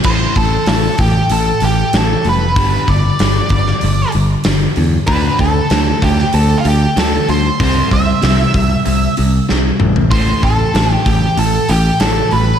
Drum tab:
CC |x---------------|----------------|----------------|----------------|
HH |--o-o-o-o-o-o-o-|o-o-o-o-o-o-o-o-|o-o-o-o-o-o-o-o-|o-o-o-o-o-o-----|
SD |----o-------o---|----o--o----o---|----o--o----o---|----o-------o---|
T2 |----------------|----------------|----------------|--------------o-|
FT |----------------|----------------|----------------|---------------o|
BD |o-o---o---------|o-o---o---------|o-o---o---------|o-o---o---------|

CC |----------------|
HH |o-o-o-o-o-o-o-o-|
SD |----o-------o---|
T2 |----------------|
FT |----------------|
BD |o-o---o---------|